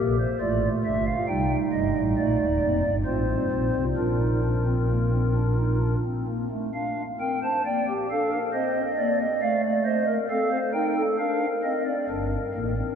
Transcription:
0.00 0.25 A#1 medium
0.00 0.25 A#2 medium
0.00 0.17 A#3 medium
0.00 0.17 G4 medium
0.00 0.16 A#4 medium
0.20 0.39 C5 medium
0.41 0.68 A1 medium
0.41 0.68 A2 medium
0.41 1.17 A3 medium
0.41 1.17 F4 medium
0.41 0.68 D5 medium
0.85 1.12 G1 medium
0.85 1.12 G2 medium
0.85 1.04 E5 medium
1.07 1.26 F5 medium
1.28 1.56 C2 medium
1.28 1.56 C3 medium
1.28 2.05 G3 medium
1.28 2.82 D#4 medium
1.28 1.56 G5 medium
1.73 1.92 G1 medium
1.73 1.92 G2 medium
1.73 2.01 D#5 medium
1.96 2.15 A1 medium
1.96 2.15 A2 medium
2.18 2.37 A#1 medium
2.18 2.37 A#2 medium
2.18 2.46 A3 medium
2.18 2.95 D5 medium
2.39 2.58 D#1 medium
2.39 2.59 D#2 medium
2.61 2.81 F1 medium
2.61 2.81 F2 medium
2.61 2.90 A#3 medium
2.84 3.03 G1 medium
2.84 3.03 G2 medium
3.05 3.34 A1 medium
3.05 3.34 A2 medium
3.05 3.84 C4 medium
3.05 3.84 F4 medium
3.05 3.84 C5 medium
3.51 3.71 A#1 medium
3.51 3.71 A#2 medium
3.73 3.94 C2 medium
3.73 3.94 C3 medium
3.96 5.95 A#1 medium
3.96 5.95 A#2 medium
3.96 4.17 D4 medium
3.96 5.95 F4 medium
3.96 5.95 A#4 medium
4.20 4.40 D#4 medium
4.43 4.63 D4 medium
4.66 4.86 C4 medium
4.89 5.09 A#3 medium
5.13 5.33 C4 medium
5.35 5.55 D4 medium
5.58 5.78 D#4 medium
5.82 6.02 D4 medium
6.05 6.25 C4 medium
6.28 6.48 A#3 medium
6.51 6.71 A3 medium
6.74 7.02 D4 medium
6.74 7.02 F5 medium
7.20 7.48 C4 medium
7.20 7.39 A#4 medium
7.20 7.39 G5 medium
7.43 7.62 C5 medium
7.43 7.62 A5 medium
7.65 7.93 A#3 medium
7.65 7.85 D5 medium
7.65 7.93 G5 medium
7.88 8.07 G4 medium
8.11 8.38 D4 medium
8.11 8.29 A4 medium
8.11 8.38 F5 medium
8.31 8.51 A#4 medium
8.53 8.81 C4 medium
8.53 8.81 C5 loud
8.53 9.18 D#5 medium
8.98 9.26 A#3 medium
8.98 9.17 D5 loud
9.20 9.39 D#5 loud
9.42 10.18 A3 medium
9.42 9.61 D5 medium
9.42 9.61 F5 loud
9.63 9.83 D5 loud
9.86 10.05 C5 loud
9.86 10.13 D#5 medium
10.07 10.27 A#4 medium
10.30 10.57 C4 medium
10.30 10.49 A4 loud
10.30 10.58 F5 medium
10.51 10.71 C5 loud
10.73 11.01 D#4 medium
10.73 10.93 A#4 loud
10.73 11.01 G5 medium
10.96 11.15 A4 medium
11.19 11.46 D4 medium
11.19 11.96 A#4 loud
11.19 11.46 F5 medium
11.64 11.92 C4 medium
11.64 11.83 D#5 medium
11.86 12.05 D5 medium
12.09 12.37 G1 medium
12.09 12.37 G2 medium
12.09 12.37 D4 medium
12.09 12.95 A#4 medium
12.54 12.82 A1 medium
12.54 12.82 A2 medium
12.54 12.73 A#3 medium
12.77 12.95 C4 medium

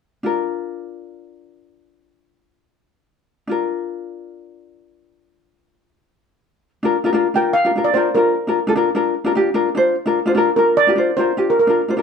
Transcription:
0.23 3.44 D4 medium
0.23 3.44 F4 medium
0.23 3.45 A#4 medium
3.47 6.68 D4 medium
3.47 6.69 F4 medium
3.47 6.70 A#4 medium
6.83 6.95 D4 medium
6.83 6.95 F4 medium
6.83 6.96 A#4 medium
7.04 7.09 D4 medium
7.04 7.10 F4 medium
7.04 7.10 A#4 medium
7.13 7.26 D4 medium
7.13 7.26 F4 medium
7.13 7.27 A#4 medium
7.34 7.52 D4 medium
7.34 7.53 F4 medium
7.34 7.53 A#4 medium
7.34 7.53 G5 medium
7.53 7.86 F5 medium
7.65 7.70 D4 medium
7.65 7.70 F4 medium
7.65 7.71 A#4 medium
7.76 7.88 D4 medium
7.76 7.88 F4 soft
7.76 7.88 A#4 medium
7.84 7.93 D5 medium
7.94 8.07 D4 medium
7.94 8.07 F4 medium
7.94 8.08 A#4 medium
7.94 8.13 C5 medium
8.15 8.33 D4 medium
8.15 8.34 F4 medium
8.15 8.52 A#4 medium
8.15 8.34 A#4 medium
8.47 8.58 D4 medium
8.47 8.58 F4 medium
8.47 8.58 A#4 medium
8.67 8.72 D4 medium
8.67 8.72 F4 medium
8.67 8.73 A4 medium
8.76 8.88 D4 medium
8.76 8.88 F4 medium
8.76 8.89 A#4 medium
8.95 9.13 D4 medium
8.95 9.13 F4 medium
8.95 9.14 A#4 medium
9.24 9.31 D4 medium
9.24 9.31 F4 medium
9.24 9.32 A#4 medium
9.35 9.48 D4 medium
9.35 9.49 F4 medium
9.35 9.49 G4 medium
9.54 9.68 D4 medium
9.54 9.68 F4 medium
9.54 9.68 A#4 medium
9.75 9.94 D4 medium
9.75 9.94 F4 medium
9.75 9.95 C5 medium
10.06 10.18 D4 medium
10.06 10.18 F4 medium
10.06 10.18 A#4 medium
10.26 10.32 D4 medium
10.26 10.33 F4 medium
10.26 10.33 C5 medium
10.35 10.48 D4 medium
10.35 10.49 F4 medium
10.35 10.50 A#4 medium
10.56 10.75 D4 medium
10.56 10.75 F4 medium
10.56 10.75 A#4 medium
10.56 10.76 A#4 medium
10.77 11.15 D5 loud
10.87 10.93 D4 medium
10.87 10.93 F4 medium
10.87 10.94 G4 medium
10.95 11.09 D4 medium
10.95 11.10 F4 medium
10.95 11.10 C5 medium
11.17 11.30 D4 medium
11.17 11.31 F4 medium
11.17 11.31 A#4 medium
11.17 11.46 C5 medium
11.37 11.56 D4 medium
11.37 11.56 F4 soft
11.37 11.56 G4 medium
11.50 11.58 A#4 medium
11.59 11.96 A#4 medium
11.67 11.79 D4 medium
11.67 11.80 F4 medium
11.67 11.80 A#4 medium
11.88 11.94 D4 medium
11.88 11.95 F4 medium
11.88 11.95 C5 medium
11.97 12.02 D4 medium
11.97 12.02 F4 soft
11.97 12.02 A#4 medium

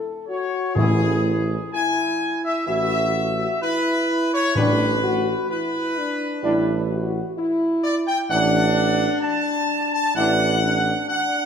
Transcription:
0.00 0.25 A4 medium
0.27 0.76 F#4 medium
0.27 0.72 C#5 medium
0.75 1.57 A1 loud
0.75 2.17 A2 loud
0.75 1.13 E3 medium
0.75 1.57 E4 medium
0.75 1.13 E4 medium
0.75 1.69 G#4 loud
1.72 2.65 E4 medium
1.72 2.40 G#5 loud
2.45 2.66 E5 loud
2.67 3.47 A1 medium
2.67 3.04 E3 medium
2.67 3.04 E4 medium
2.67 3.59 F#4 loud
2.67 3.58 E5 loud
3.62 4.53 E4 medium
3.62 4.29 B4 loud
4.34 4.55 C#5 loud
4.55 5.35 A1 loud
4.55 5.93 A2 loud
4.55 4.92 G3 medium
4.55 4.92 D4 medium
4.55 5.00 D4 medium
4.55 5.46 B4 loud
5.04 5.47 F#4 loud
5.50 5.98 E4 medium
5.50 7.33 B4 loud
5.98 6.44 D4 medium
6.42 7.22 A1 loud
6.42 6.79 G3 medium
6.42 6.78 D4 medium
6.42 6.87 E4 medium
6.91 7.37 F#4 medium
7.37 8.13 E4 loud
7.84 7.94 D5 loud
8.07 8.18 G5 loud
8.29 9.07 A1 loud
8.29 8.65 E3 medium
8.29 8.65 D4 medium
8.29 10.12 D4 loud
8.29 9.18 F#5 loud
9.22 9.92 A5 loud
9.93 10.15 A5 loud
10.16 10.94 A1 loud
10.16 10.52 E3 medium
10.16 10.52 D4 loud
10.16 10.59 E4 loud
10.16 11.05 F#5 loud
10.62 11.46 D4 medium
11.08 11.46 F#5 loud

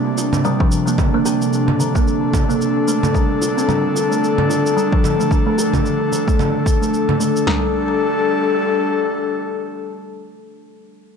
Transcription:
0.00 3.11 C3 medium
0.00 0.96 G3 medium
0.00 7.43 D4 medium
0.18 0.32 F4 medium
0.18 shaker medium
0.33 low conga medium
0.33 shaker soft
0.45 0.59 G3 medium
0.45 shaker soft
0.60 0.67 F3 medium
0.60 kick loud
0.72 shaker medium
0.87 0.98 A#3 medium
0.87 shaker soft
0.98 1.07 D3 medium
0.98 7.43 A4 medium
0.98 kick medium
0.98 low conga medium
0.98 shaker soft
1.14 1.24 A#3 medium
1.26 1.34 G4 medium
1.26 shaker medium
1.42 shaker soft
1.53 shaker soft
1.68 low conga medium
1.80 1.94 D3 medium
1.80 shaker medium
1.95 2.06 A#3 medium
1.95 kick loud
1.95 shaker soft
2.08 shaker soft
2.33 kick medium
2.33 low conga medium
2.33 shaker medium
2.49 2.60 A#3 medium
2.49 shaker soft
2.61 shaker soft
2.88 3.13 A3 medium
2.88 shaker medium
3.03 low conga medium
3.03 shaker soft
3.14 7.43 D3 medium
3.14 3.24 G3 medium
3.14 kick medium
3.14 shaker soft
3.42 3.56 F4 medium
3.42 shaker medium
3.57 3.67 C4 medium
3.57 shaker soft
3.69 3.83 G3 medium
3.69 low conga medium
3.69 shaker soft
3.95 4.10 F4 medium
3.95 shaker medium
4.11 4.22 A3 medium
4.11 shaker soft
4.24 shaker soft
4.38 low conga medium
4.49 4.64 F4 medium
4.49 shaker medium
4.66 shaker soft
4.77 4.91 G3 medium
4.77 shaker soft
4.92 4.99 F3 medium
4.92 kick loud
5.04 low conga medium
5.04 shaker medium
5.19 5.30 A3 medium
5.19 shaker soft
5.31 5.40 D3 medium
5.31 kick medium
5.31 shaker soft
5.46 5.57 A3 medium
5.58 5.67 G4 medium
5.58 shaker medium
5.73 kick soft
5.73 low conga medium
5.73 shaker soft
5.86 shaker soft
6.12 6.27 D3 medium
6.12 shaker medium
6.28 6.38 A3 medium
6.28 kick medium
6.28 shaker soft
6.39 low conga medium
6.39 shaker soft
6.66 kick medium
6.66 shaker medium
6.82 6.92 A3 medium
6.82 shaker soft
6.94 shaker soft
7.09 low conga medium
7.20 7.46 A3 medium
7.20 shaker medium
7.36 shaker soft
7.47 7.72 G3 medium
7.47 10.63 G3 medium
7.47 10.63 D4 medium
7.47 10.63 A4 medium
7.47 snare medium
7.47 floor tom medium

